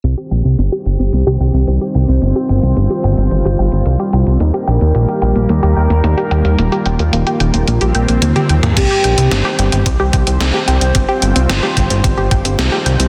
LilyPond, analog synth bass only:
\new Staff \with { instrumentName = "Analog synth bass" } { \clef bass \time 4/4 \key c \minor \tempo 4 = 110 c,16 r16 bes,,16 c,16 g,,16 r16 g,,16 g,,16 c,16 c,16 c,16 c,16 c,16 r16 c,16 c,16 | g,,16 r16 g,,16 c,16 g,,16 r16 g,,16 g,,16 g,,16 g,,16 g,,16 g,,16 c,16 r16 c,16 c,16 | ees,16 r16 bes,,16 ees,16 bes,,16 r16 bes,,16 bes,,16 ees,16 ees,16 ees,16 ees,16 ees,16 r16 ees,16 ees,16 | ees,,16 r16 ees,,16 ees,16 ees,,16 r16 ees,,16 ees,,16 bes,,16 bes,,16 bes,,16 bes,,16 ees,16 r16 ees,16 ees,16 |
c,16 r16 bes,,16 c,16 g,,16 r16 g,,16 g,,16 c,16 c,16 c,16 c,16 c,16 r16 c,16 c,16 | g,,16 r16 g,,16 c,16 g,,16 r16 g,,16 g,,16 g,,16 g,,16 g,,16 g,,16 c,16 r16 c,16 c,16 | }